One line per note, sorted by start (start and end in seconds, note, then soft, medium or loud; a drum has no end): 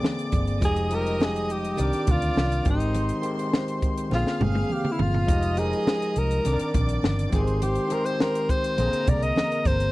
0.00 0.38 D3 medium
0.00 0.38 A#3 medium
0.00 0.39 C4 medium
0.00 0.40 G#4 medium
0.00 0.60 D5 medium
0.00 0.59 D6 medium
0.00 high conga medium
0.04 snare medium
0.19 closed hi-hat medium
0.32 0.62 G1 medium
0.32 kick medium
0.32 closed hi-hat medium
0.32 high conga medium
0.47 closed hi-hat soft
0.60 1.75 F1 medium
0.60 0.83 F3 medium
0.60 0.83 G#3 medium
0.60 0.84 D#4 medium
0.60 0.84 G4 medium
0.60 1.77 D#5 medium
0.60 1.77 D#6 medium
0.60 kick loud
0.60 closed hi-hat medium
0.60 muted conga soft
0.65 0.96 G#4 loud
0.76 closed hi-hat soft
0.90 1.77 F3 medium
0.90 0.98 G3 soft
0.90 1.78 D#4 medium
0.90 1.79 G4 medium
0.90 closed hi-hat medium
0.95 1.81 G#3 medium
0.95 1.25 A#4 loud
1.07 closed hi-hat soft
1.21 1.53 G#4 medium
1.21 snare loud
1.21 high conga medium
1.36 closed hi-hat soft
1.50 2.13 G4 medium
1.50 closed hi-hat medium
1.64 closed hi-hat medium
1.77 1.90 C2 medium
1.77 2.48 D#3 medium
1.77 2.49 C4 medium
1.77 2.49 D4 medium
1.77 2.50 A#4 medium
1.77 2.65 D5 medium
1.77 2.65 D6 medium
1.77 closed hi-hat medium
1.77 muted conga medium
1.93 muted fingered electric bass stroke soft
1.93 closed hi-hat medium
2.07 2.30 D2 medium
2.07 kick medium
2.07 closed hi-hat medium
2.07 muted conga medium
2.07 low conga medium
2.11 2.68 F4 medium
2.22 closed hi-hat soft
2.36 2.59 C2 medium
2.36 snare loud
2.36 high conga medium
2.52 closed hi-hat medium
2.64 3.10 G#1 medium
2.64 3.12 D#3 medium
2.64 3.12 G#3 medium
2.64 3.13 C4 medium
2.64 2.73 F#4 medium
2.64 4.09 C5 medium
2.64 4.09 C6 loud
2.64 kick medium
2.64 closed hi-hat medium
2.64 high conga medium
2.70 3.22 D#4 medium
2.74 3.17 G4 medium
2.80 closed hi-hat soft
2.95 closed hi-hat medium
2.95 muted conga medium
3.09 closed hi-hat soft
3.22 4.10 D#3 medium
3.22 4.11 G#3 medium
3.22 4.10 C4 medium
3.22 4.12 G4 medium
3.22 closed hi-hat medium
3.39 closed hi-hat soft
3.53 snare loud
3.53 high conga medium
3.68 closed hi-hat soft
3.82 kick medium
3.82 closed hi-hat medium
3.98 closed hi-hat medium
4.10 4.23 A#1 medium
4.10 5.04 D3 medium
4.10 5.04 A#3 medium
4.10 5.05 C4 medium
4.10 5.06 G#4 medium
4.10 5.26 F5 medium
4.10 5.26 F6 medium
4.10 snare soft
4.10 muted conga medium
4.14 4.44 F4 medium
4.27 snare medium
4.40 4.63 G1 medium
4.40 4.74 G#4 medium
4.40 high tom medium
4.40 muted conga medium
4.40 low conga medium
4.55 high tom medium
4.70 4.94 G4 medium
4.70 high conga medium
4.85 mid tom medium
4.92 5.03 E4 medium
4.99 5.28 G1 medium
4.99 5.60 F4 medium
4.99 floor tom medium
4.99 high conga medium
5.14 floor tom medium
5.26 5.73 F1 loud
5.26 5.49 F3 medium
5.26 5.50 G#3 medium
5.26 5.50 D#4 medium
5.26 5.51 G4 medium
5.26 6.43 D#5 medium
5.26 6.42 D#6 medium
5.26 kick loud
5.26 closed hi-hat medium
5.26 muted conga soft
5.43 closed hi-hat soft
5.57 6.44 F3 medium
5.57 6.44 G#3 medium
5.57 6.45 D#4 medium
5.57 6.20 G#4 loud
5.57 6.46 A#4 medium
5.57 closed hi-hat medium
5.57 muted conga soft
5.73 closed hi-hat soft
5.87 snare loud
5.87 high conga medium
6.02 closed hi-hat soft
6.16 6.38 C2 medium
6.16 6.75 A#4 loud
6.16 closed hi-hat medium
6.31 closed hi-hat medium
6.43 6.57 C2 medium
6.43 7.14 D#3 medium
6.43 7.15 C4 medium
6.43 7.15 D4 medium
6.43 6.52 A4 medium
6.43 7.31 D5 medium
6.43 7.31 D6 medium
6.43 closed hi-hat medium
6.43 muted conga soft
6.53 7.19 A#4 medium
6.59 muted fingered electric bass stroke soft
6.59 closed hi-hat medium
6.74 6.97 A#1 medium
6.74 kick medium
6.74 closed hi-hat medium
6.74 muted conga medium
6.74 low conga medium
6.89 closed hi-hat medium
7.03 7.26 G1 medium
7.03 snare loud
7.03 high conga medium
7.19 closed hi-hat medium
7.30 7.77 G#1 medium
7.30 7.78 D#3 medium
7.30 7.79 G#3 medium
7.30 7.79 C4 medium
7.30 7.40 F4 medium
7.30 8.76 C5 medium
7.30 8.76 C6 medium
7.30 kick medium
7.30 closed hi-hat medium
7.30 high conga medium
7.34 7.61 G#4 medium
7.40 7.83 G4 medium
7.47 closed hi-hat soft
7.62 7.94 G4 medium
7.62 closed hi-hat medium
7.62 muted conga soft
7.75 closed hi-hat soft
7.88 8.76 D#3 medium
7.88 8.77 G#3 medium
7.88 8.77 C4 medium
7.88 8.78 G4 medium
7.88 closed hi-hat medium
7.88 muted conga soft
7.92 8.07 A#4 medium
8.05 8.22 C5 medium
8.05 closed hi-hat soft
8.20 8.52 A#4 medium
8.20 snare loud
8.20 high conga medium
8.35 closed hi-hat medium
8.49 9.10 C5 loud
8.49 kick medium
8.49 closed hi-hat medium
8.64 closed hi-hat medium
8.77 8.89 A#1 loud
8.77 9.71 D3 medium
8.77 9.71 A#3 medium
8.77 9.72 C4 medium
8.77 9.72 G#4 medium
8.77 9.92 A#4 medium
8.77 9.92 A#5 medium
8.77 closed hi-hat medium
8.77 muted conga medium
8.93 muted fingered electric bass stroke soft
8.93 closed hi-hat medium
9.07 9.30 C2 medium
9.07 9.24 D5 loud
9.07 kick medium
9.07 closed hi-hat medium
9.07 muted conga medium
9.07 low conga medium
9.23 9.68 D#5 loud
9.23 closed hi-hat soft
9.36 snare loud
9.36 high conga medium
9.52 closed hi-hat soft
9.65 9.88 G1 medium
9.65 9.92 C5 loud
9.65 kick medium
9.65 closed hi-hat medium
9.65 high conga medium
9.80 closed hi-hat soft